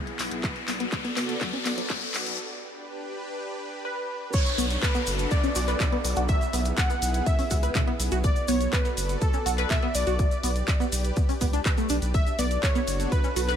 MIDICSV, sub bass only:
0, 0, Header, 1, 2, 480
1, 0, Start_track
1, 0, Key_signature, 2, "minor"
1, 0, Tempo, 487805
1, 430, Time_signature, 4, 2, 24, 8
1, 13347, End_track
2, 0, Start_track
2, 0, Title_t, "Sub bass"
2, 0, Program_c, 0, 38
2, 189, Note_on_c, 0, 35, 105
2, 285, Note_off_c, 0, 35, 0
2, 310, Note_on_c, 0, 35, 101
2, 501, Note_off_c, 0, 35, 0
2, 670, Note_on_c, 0, 35, 100
2, 861, Note_off_c, 0, 35, 0
2, 1149, Note_on_c, 0, 30, 88
2, 1340, Note_off_c, 0, 30, 0
2, 1630, Note_on_c, 0, 35, 87
2, 1821, Note_off_c, 0, 35, 0
2, 2110, Note_on_c, 0, 35, 98
2, 2205, Note_off_c, 0, 35, 0
2, 2229, Note_on_c, 0, 35, 101
2, 2349, Note_off_c, 0, 35, 0
2, 4510, Note_on_c, 0, 35, 101
2, 4701, Note_off_c, 0, 35, 0
2, 4990, Note_on_c, 0, 30, 88
2, 5181, Note_off_c, 0, 30, 0
2, 5470, Note_on_c, 0, 35, 87
2, 5661, Note_off_c, 0, 35, 0
2, 5950, Note_on_c, 0, 35, 95
2, 6045, Note_off_c, 0, 35, 0
2, 6069, Note_on_c, 0, 35, 101
2, 6260, Note_off_c, 0, 35, 0
2, 6429, Note_on_c, 0, 35, 93
2, 6620, Note_off_c, 0, 35, 0
2, 6909, Note_on_c, 0, 35, 108
2, 7100, Note_off_c, 0, 35, 0
2, 7390, Note_on_c, 0, 37, 86
2, 7581, Note_off_c, 0, 37, 0
2, 7869, Note_on_c, 0, 35, 108
2, 7965, Note_off_c, 0, 35, 0
2, 7989, Note_on_c, 0, 35, 102
2, 8180, Note_off_c, 0, 35, 0
2, 8349, Note_on_c, 0, 35, 99
2, 8540, Note_off_c, 0, 35, 0
2, 8829, Note_on_c, 0, 30, 85
2, 9020, Note_off_c, 0, 30, 0
2, 9309, Note_on_c, 0, 35, 88
2, 9500, Note_off_c, 0, 35, 0
2, 9790, Note_on_c, 0, 35, 96
2, 9885, Note_off_c, 0, 35, 0
2, 9909, Note_on_c, 0, 35, 98
2, 10100, Note_off_c, 0, 35, 0
2, 10270, Note_on_c, 0, 35, 98
2, 10461, Note_off_c, 0, 35, 0
2, 10749, Note_on_c, 0, 35, 102
2, 10940, Note_off_c, 0, 35, 0
2, 11230, Note_on_c, 0, 37, 87
2, 11421, Note_off_c, 0, 37, 0
2, 11710, Note_on_c, 0, 35, 106
2, 11806, Note_off_c, 0, 35, 0
2, 11829, Note_on_c, 0, 35, 103
2, 12020, Note_off_c, 0, 35, 0
2, 12189, Note_on_c, 0, 35, 103
2, 12380, Note_off_c, 0, 35, 0
2, 12670, Note_on_c, 0, 30, 85
2, 12861, Note_off_c, 0, 30, 0
2, 13150, Note_on_c, 0, 35, 88
2, 13340, Note_off_c, 0, 35, 0
2, 13347, End_track
0, 0, End_of_file